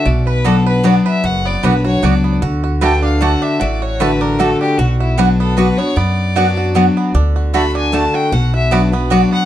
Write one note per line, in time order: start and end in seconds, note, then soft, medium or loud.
0.00 0.44 D4 medium
0.00 0.06 F#4 medium
0.05 0.97 B1 loud
0.05 0.81 B2 medium
0.05 1.24 F#4 medium
0.05 0.27 D5 medium
0.27 0.65 B4 medium
0.27 0.47 B4 medium
0.44 0.82 F#3 medium
0.44 0.54 B3 medium
0.44 0.84 B3 medium
0.44 0.83 B3 loud
0.44 0.83 D4 medium
0.44 0.55 F#4 medium
0.44 0.83 F#4 loud
0.44 0.66 A4 medium
0.44 0.55 D5 loud
0.44 0.55 F#5 medium
0.66 1.05 B4 medium
0.66 0.88 B4 medium
0.83 1.22 F#3 medium
0.83 0.94 B3 medium
0.83 1.22 B3 loud
0.83 1.41 B3 medium
0.83 1.22 D4 loud
0.83 0.94 F#4 loud
0.83 1.22 F#4 medium
0.83 0.94 D5 medium
0.83 1.06 D5 medium
0.83 0.95 F#5 medium
1.06 1.60 B4 medium
1.06 1.26 E5 loud
1.24 1.54 F#1 medium
1.24 1.99 F#2 medium
1.24 1.80 F#4 medium
1.24 1.48 F#5 medium
1.45 1.99 B3 medium
1.45 1.66 D5 medium
1.63 1.97 B1 medium
1.63 1.84 F#3 medium
1.63 1.73 B3 loud
1.63 1.84 B3 medium
1.63 1.84 D4 medium
1.63 1.73 F#4 medium
1.63 1.83 F#4 medium
1.63 2.20 B4 soft
1.63 1.85 B4 medium
1.63 1.74 D5 loud
1.63 1.74 F#5 loud
1.84 2.02 D4 soft
1.84 2.02 F#4 medium
1.84 2.06 C#5 medium
2.02 2.36 C#2 medium
2.02 2.40 F#3 medium
2.02 2.13 B3 medium
2.02 2.41 B3 medium
2.02 2.41 D4 medium
2.02 2.41 F#4 medium
2.02 2.13 F#4 medium
2.02 2.41 F#4 medium
2.02 2.13 D5 medium
2.02 2.34 D5 medium
2.02 2.13 F#5 loud
2.24 2.42 B3 medium
2.42 3.34 D2 loud
2.42 2.80 D3 medium
2.42 2.64 F#4 medium
2.64 3.21 F#4 medium
2.81 3.19 D3 medium
2.81 3.19 A3 medium
2.81 2.92 A3 medium
2.81 3.20 D4 medium
2.81 3.20 F#4 medium
2.81 2.92 F#4 medium
2.81 3.38 B4 medium
2.81 2.92 D5 loud
2.81 3.02 G5 medium
2.81 2.92 A5 loud
3.03 3.41 D4 medium
3.03 3.23 F5 medium
3.21 3.59 D3 medium
3.21 3.31 A3 medium
3.21 3.59 A3 medium
3.21 3.59 D4 loud
3.21 3.59 F#4 medium
3.21 3.31 F#4 medium
3.21 3.59 F#4 loud
3.21 3.31 D5 medium
3.21 3.44 F#5 medium
3.21 3.31 A5 loud
3.42 4.21 D4 medium
3.42 3.62 E5 medium
3.60 4.52 A1 medium
3.60 4.36 A2 loud
3.60 3.82 F#4 medium
3.60 3.83 D5 medium
3.82 4.40 F#4 medium
3.82 4.03 C#5 medium
4.00 4.38 D3 loud
4.00 4.10 A3 loud
4.00 4.38 A3 medium
4.00 4.38 D4 medium
4.00 4.10 F#4 medium
4.00 4.38 F#4 loud
4.00 4.56 B4 medium
4.00 4.22 B4 medium
4.00 4.10 D5 loud
4.00 4.10 A5 loud
4.21 4.61 D4 medium
4.21 4.41 A#4 medium
4.39 4.77 D3 medium
4.39 4.49 A3 medium
4.39 4.77 A3 loud
4.39 4.77 D4 medium
4.39 4.49 F#4 medium
4.39 4.79 F#4 medium
4.39 4.78 F#4 medium
4.39 4.60 A4 medium
4.39 4.49 D5 medium
4.39 4.49 A5 medium
4.60 5.40 D4 medium
4.60 4.79 G4 medium
4.78 5.70 B1 loud
4.78 5.54 B2 loud
4.78 4.98 F#4 medium
4.78 5.00 F#4 medium
4.99 5.19 E4 medium
4.99 5.58 F#4 medium
5.18 5.56 F#3 loud
5.18 5.28 B3 loud
5.18 5.56 B3 loud
5.18 5.56 D4 loud
5.18 5.39 F#4 medium
5.18 5.28 F#4 medium
5.18 5.56 F#4 loud
5.18 5.75 B4 medium
5.18 5.28 D5 loud
5.18 5.28 F#5 loud
5.39 5.77 B3 medium
5.39 5.58 A4 medium
5.56 5.77 F#3 medium
5.56 5.67 B3 medium
5.56 5.78 B3 medium
5.56 5.78 D4 loud
5.56 5.67 F#4 loud
5.56 6.36 F#4 medium
5.56 5.77 F#4 loud
5.56 5.79 B4 medium
5.56 5.67 D5 medium
5.56 5.68 F#5 medium
5.78 5.96 B3 medium
5.78 5.97 D4 soft
5.78 5.96 F#4 medium
5.78 5.98 C#5 loud
5.96 6.71 F#2 medium
5.96 6.88 F#2 medium
5.96 6.53 B3 medium
5.96 7.14 D5 medium
6.36 6.74 F#3 medium
6.36 6.46 B3 loud
6.36 6.74 B3 loud
6.36 6.74 D4 medium
6.36 6.57 F#4 medium
6.36 6.46 F#4 medium
6.36 6.74 F#4 loud
6.36 6.46 D5 medium
6.36 6.46 F#5 loud
6.57 6.75 F#4 medium
6.75 7.13 F#3 medium
6.75 7.13 B3 medium
6.75 6.85 B3 medium
6.75 7.13 D4 loud
6.75 7.35 F#4 medium
6.75 6.85 F#4 medium
6.75 7.13 F#4 medium
6.75 6.86 D5 medium
6.75 6.86 F#5 medium
6.97 7.14 B3 medium
7.14 8.06 D2 medium
7.14 7.52 D3 medium
7.14 7.71 D4 medium
7.36 7.53 F#4 medium
7.54 7.91 D3 medium
7.54 7.64 A3 medium
7.54 7.91 A3 medium
7.54 7.92 D4 medium
7.54 7.92 F#4 medium
7.54 7.64 F#4 loud
7.54 7.92 F#4 loud
7.54 7.64 D5 medium
7.54 7.64 A5 medium
7.54 7.74 B5 medium
7.75 8.29 D4 medium
7.75 7.95 G#5 medium
7.92 8.30 D3 medium
7.92 8.30 A3 loud
7.92 8.03 A3 medium
7.92 8.31 D4 medium
7.92 8.13 F#4 medium
7.92 8.31 F#4 loud
7.92 8.03 F#4 medium
7.92 8.03 D5 medium
7.92 8.17 A5 medium
7.92 8.04 A5 medium
8.14 8.31 F#4 medium
8.14 8.35 G5 loud
8.32 9.23 B1 medium
8.32 9.07 B2 loud
8.32 8.53 F#4 medium
8.32 8.54 F#5 medium
8.54 9.07 F#4 medium
8.54 8.73 E5 medium
8.71 8.92 F#3 medium
8.71 8.81 B3 medium
8.71 8.92 B3 medium
8.71 8.92 D4 loud
8.71 8.81 F#4 loud
8.71 8.91 F#4 medium
8.71 9.28 B4 medium
8.71 8.92 D5 medium
8.71 8.82 D5 medium
8.71 8.82 F#5 loud
8.92 9.31 B3 medium
8.92 9.11 D4 soft
8.92 9.10 F#4 medium
8.92 9.12 B4 medium
9.10 9.45 F#3 medium
9.10 9.20 B3 medium
9.10 9.45 B3 medium
9.10 9.45 D4 loud
9.10 9.20 F#4 loud
9.10 9.45 F#4 medium
9.10 9.45 F#4 loud
9.10 9.32 D5 medium
9.10 9.21 D5 medium
9.10 9.21 F#5 medium
9.32 9.45 B3 medium
9.32 9.45 F#5 loud